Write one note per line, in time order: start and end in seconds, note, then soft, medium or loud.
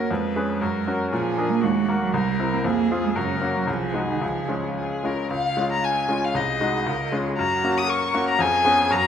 0.00 0.12 F#2 soft
0.00 0.12 A#3 medium
0.00 0.12 C#4 soft
0.00 0.13 F#4 soft
0.00 0.11 A#4 soft
0.00 0.13 A#4 soft
0.09 0.35 F2 medium
0.09 0.86 G#3 medium
0.09 0.63 B4 soft
0.36 0.59 C#4 soft
0.36 0.59 G#4 soft
0.36 0.59 B4 soft
0.61 0.86 F#2 medium
0.61 1.10 A#4 soft
0.88 1.09 C#4 soft
0.88 1.10 F#4 soft
0.88 1.10 A#4 soft
1.11 1.36 A#2 medium
1.11 1.52 F3 medium
1.11 1.62 G#4 medium
1.37 1.60 D4 soft
1.37 1.60 G#4 soft
1.37 1.60 A#4 soft
1.50 1.64 A#3 medium
1.61 1.87 D#2 medium
1.61 2.01 G#3 medium
1.61 2.12 F#4 medium
1.89 2.11 A#3 soft
1.89 2.11 F#4 soft
1.89 2.12 A#4 soft
2.01 2.16 F#3 medium
2.14 2.38 C2 medium
2.14 2.55 G3 medium
2.14 2.67 A#4 medium
2.39 2.62 C4 soft
2.39 2.62 E4 soft
2.39 2.62 A#4 soft
2.54 2.64 C4 medium
2.64 2.89 F2 medium
2.64 3.02 A#3 medium
2.64 3.17 G#4 medium
2.91 3.14 C4 soft
2.91 3.14 F4 soft
2.91 3.14 G#4 soft
3.05 3.16 G#3 medium
3.15 3.41 F#2 medium
3.15 3.54 C#3 medium
3.15 3.70 A#4 medium
3.42 3.65 A#3 soft
3.42 3.65 C#4 soft
3.42 3.66 F#4 soft
3.57 3.61 F#3 medium
3.67 3.93 C2 medium
3.67 4.08 F3 medium
3.67 4.72 G#4 soft
3.94 4.19 G#3 soft
3.94 4.19 D#4 soft
3.94 4.19 F#4 soft
4.10 4.22 D#3 medium
4.21 4.49 C#2 soft
4.21 4.76 F3 medium
4.49 5.00 G#3 soft
4.49 5.00 C#4 soft
4.49 5.00 F4 soft
4.77 5.07 G#4 soft
5.04 5.28 G#3 soft
5.04 5.29 C#4 soft
5.04 5.29 F4 soft
5.04 5.31 A#4 soft
5.30 5.56 C#2 medium
5.30 6.32 F4 medium
5.30 5.68 F5 medium
5.57 6.05 G#3 soft
5.57 6.06 C#4 soft
5.57 6.06 F4 soft
5.72 5.86 A#5 medium
5.84 6.26 G#5 medium
6.08 6.33 G#3 soft
6.08 6.33 C#4 soft
6.08 6.33 F4 soft
6.25 6.38 F5 medium
6.35 6.60 C2 medium
6.35 6.89 G#4 medium
6.35 7.13 D#5 medium
6.61 6.84 G#3 soft
6.61 6.84 D#4 soft
6.61 6.84 F#4 soft
6.86 7.12 C#2 medium
6.86 7.14 A#4 medium
7.12 7.35 G#3 soft
7.12 7.36 C#4 soft
7.12 7.36 F4 soft
7.12 7.37 G#4 medium
7.37 7.63 F#2 medium
7.37 7.90 F#4 medium
7.37 7.79 A#5 medium
7.64 8.11 A#3 soft
7.64 8.11 C#4 soft
7.64 8.11 F#4 soft
7.78 7.91 D#6 medium
7.89 8.39 A#4 medium
7.89 8.27 C#6 medium
8.14 8.37 A#3 soft
8.14 8.37 C#4 soft
8.14 8.37 F#4 medium
8.29 8.42 A#5 medium
8.39 8.64 F2 medium
8.39 8.93 G#4 medium
8.39 8.93 G#5 medium
8.65 8.88 B3 soft
8.65 8.88 C#4 medium
8.65 8.88 G#4 medium
8.90 9.07 F#2 medium
8.90 9.07 F#4 medium
8.90 9.07 A#5 medium